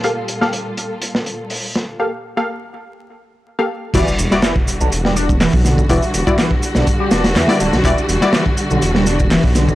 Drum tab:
CC |----------------|----------------|x---------------|----------------|
HH |x-x-x-x-x-x-o-x-|----------------|x-x-x-x-x-x-o-x-|xxx-x-x-x-xxxxx-|
SH |----------------|----------------|xxxxx-xxx-xxx-xx|xxxxx-xxx-xxx-xx|
CP |----------------|----------------|----x-------x---|----x-------x---|
SD |---o-----o----o-|----------------|---oo----o--o-o-|----o--o--oooo-o|
BD |----------------|----------------|o----o-----o-o-o|o--o-o--o-------|

CC |----------------|
HH |x-x-x-x-x-x-o-x-|
SH |xxxxx-xxx-xxx-xx|
CP |----x-------x---|
SD |---oo----o--o-o-|
BD |o----o-----o-o-o|